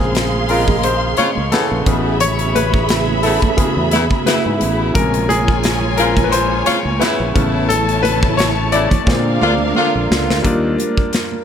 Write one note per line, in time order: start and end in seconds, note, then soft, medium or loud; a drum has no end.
0.00 1.14 A#1 medium
0.00 0.79 C#3 medium
0.00 4.91 C#3 medium
0.00 0.79 G#3 medium
0.00 0.80 C4 medium
0.00 0.51 G#4 medium
0.00 1.83 G#4 medium
0.00 0.50 A#4 medium
0.00 1.83 F5 medium
0.00 1.85 F5 medium
0.00 4.91 G#5 medium
0.00 1.83 C6 medium
0.15 snare loud
0.15 closed hi-hat medium
0.15 muted conga soft
0.33 high conga soft
0.49 0.65 C#3 medium
0.49 0.65 C4 medium
0.49 0.65 F4 medium
0.49 0.85 A#4 medium
0.49 2.17 D#5 medium
0.49 open hi-hat soft
0.68 kick medium
0.68 high conga medium
0.68 low conga medium
0.83 1.19 C5 medium
0.83 closed hi-hat medium
0.83 muted conga soft
1.17 1.30 C#3 medium
1.17 1.30 C4 medium
1.17 1.30 F4 medium
1.17 1.53 C#5 medium
1.17 muted fingered electric bass stroke soft
1.17 closed hi-hat medium
1.17 high conga medium
1.35 1.51 C#2 medium
1.35 high conga medium
1.52 2.17 C#3 medium
1.52 2.17 E3 medium
1.52 2.17 B3 medium
1.52 2.23 A4 medium
1.52 snare loud
1.52 closed hi-hat medium
1.52 high conga medium
1.72 1.85 A#1 medium
1.85 3.37 A1 loud
1.85 2.33 C#3 medium
1.85 4.92 A3 medium
1.85 4.92 B3 medium
1.85 2.34 B3 medium
1.85 4.92 E4 medium
1.85 3.57 F#4 medium
1.85 4.91 G#4 medium
1.85 2.33 G#4 soft
1.85 4.91 E5 medium
1.85 4.91 B5 medium
1.85 kick loud
1.85 closed hi-hat medium
1.85 muted conga soft
2.20 2.56 C#5 loud
2.20 closed hi-hat loud
2.20 muted conga soft
2.20 low conga medium
2.39 closed hi-hat soft
2.55 3.20 B4 loud
2.55 closed hi-hat medium
2.55 muted conga soft
2.55 high conga medium
2.74 kick loud
2.89 5.19 E4 soft
2.89 snare loud
2.89 closed hi-hat medium
3.08 high conga soft
3.23 3.39 C#3 medium
3.23 3.39 B3 medium
3.23 3.39 E4 medium
3.23 4.30 A4 medium
3.23 open hi-hat medium
3.42 kick medium
3.42 closed hi-hat soft
3.42 high conga medium
3.42 low conga medium
3.57 3.88 C#3 soft
3.57 3.89 B3 medium
3.57 5.26 F#4 medium
3.57 3.89 G#4 soft
3.57 muted fingered electric bass stroke soft
3.57 kick loud
3.57 closed hi-hat medium
3.57 muted conga soft
3.77 4.07 E2 medium
3.91 4.04 C#3 medium
3.91 4.04 B3 medium
3.91 4.04 E4 medium
3.91 snare soft
3.91 closed hi-hat medium
3.91 muted conga soft
3.91 high conga medium
4.10 kick medium
4.10 high conga medium
4.26 4.92 C#3 medium
4.26 4.92 B3 medium
4.26 4.92 E4 medium
4.26 4.91 B4 medium
4.26 snare loud
4.26 closed hi-hat medium
4.26 high conga medium
4.46 4.63 G#2 medium
4.61 4.92 A1 medium
4.61 closed hi-hat medium
4.94 6.63 A#1 medium
4.94 5.94 C3 medium
4.94 5.94 C#3 medium
4.94 5.94 G#3 medium
4.94 7.34 G#3 medium
4.94 7.32 F4 medium
4.94 5.27 A#4 loud
4.94 7.32 C#5 medium
4.94 7.32 G#5 loud
4.94 kick loud
4.94 closed hi-hat medium
4.94 muted conga soft
4.94 low conga medium
5.14 closed hi-hat medium
5.29 6.00 G#4 loud
5.29 closed hi-hat medium
5.29 muted conga soft
5.29 high conga medium
5.48 kick loud
5.63 snare loud
5.63 closed hi-hat medium
5.82 high conga soft
5.97 6.14 C#3 medium
5.97 6.14 C4 medium
5.97 6.14 F4 medium
5.97 6.27 A#4 medium
5.97 closed hi-hat medium
5.97 muted conga soft
6.17 kick medium
6.17 closed hi-hat soft
6.17 high conga medium
6.17 low conga medium
6.24 6.32 B4 medium
6.32 6.68 C5 loud
6.32 closed hi-hat medium
6.32 muted conga soft
6.66 6.79 C#3 medium
6.66 6.79 C4 medium
6.66 6.79 F4 medium
6.66 7.02 C#5 loud
6.66 muted fingered electric bass stroke soft
6.66 snare soft
6.66 closed hi-hat medium
6.66 muted conga soft
6.66 high conga medium
6.83 6.99 C#2 medium
6.83 high conga medium
7.00 7.66 C#3 medium
7.00 7.66 B3 medium
7.00 7.66 E4 loud
7.00 7.71 B4 medium
7.00 snare loud
7.00 closed hi-hat medium
7.00 muted conga soft
7.00 high conga medium
7.20 7.34 A#1 loud
7.34 8.87 A1 medium
7.34 9.03 C#3 medium
7.34 9.06 C#3 medium
7.34 9.03 A3 soft
7.34 9.06 A3 medium
7.34 9.03 B3 medium
7.34 9.06 B3 medium
7.34 9.04 E4 medium
7.34 9.06 E4 medium
7.34 9.04 C#5 medium
7.34 9.04 A5 loud
7.34 kick medium
7.34 closed hi-hat medium
7.69 8.05 A4 loud
7.69 closed hi-hat medium
7.69 muted conga soft
7.69 low conga medium
7.89 closed hi-hat soft
8.03 8.39 B4 loud
8.03 closed hi-hat medium
8.03 high conga medium
8.23 kick loud
8.37 8.73 C#5 loud
8.37 snare loud
8.37 closed hi-hat medium
8.37 muted conga soft
8.72 8.88 C#3 medium
8.72 8.88 B3 medium
8.72 8.88 E4 medium
8.72 10.06 D5 medium
8.72 closed hi-hat medium
8.91 kick medium
8.91 closed hi-hat soft
8.91 high conga medium
8.91 low conga medium
9.06 9.38 A#2 loud
9.06 9.54 D3 medium
9.06 10.44 D3 medium
9.06 9.54 G#3 soft
9.06 10.44 G#3 medium
9.06 10.43 A#3 medium
9.06 9.54 C4 medium
9.06 10.42 D4 medium
9.06 10.43 F4 medium
9.06 10.43 G#4 medium
9.06 10.42 A#4 medium
9.06 10.42 F5 loud
9.06 kick medium
9.06 snare medium
9.06 muted conga soft
9.41 9.72 D2 medium
9.41 9.53 D3 medium
9.41 9.53 A#3 medium
9.41 9.53 F4 medium
9.41 muted conga soft
9.41 high conga medium
9.58 high conga medium
9.75 10.41 D3 medium
9.75 10.75 G#3 medium
9.75 10.41 A#3 medium
9.75 10.41 F4 medium
9.75 muted conga soft
9.75 high conga medium
9.95 10.09 A#1 medium
10.00 10.96 C5 soft
10.11 10.27 C#2 medium
10.11 snare loud
10.21 11.15 D5 medium
10.30 10.44 D2 medium
10.30 snare medium
10.43 10.75 D#2 loud
10.43 11.44 G3 medium
10.43 11.44 A#3 medium
10.43 11.44 D4 medium
10.43 11.44 F4 medium
10.43 kick medium
10.43 closed hi-hat medium
10.43 low conga medium
10.47 11.44 A#4 medium
10.79 closed hi-hat medium
10.79 muted conga soft
10.79 high conga medium
10.97 kick medium
11.13 snare loud
11.13 closed hi-hat medium
11.32 high conga soft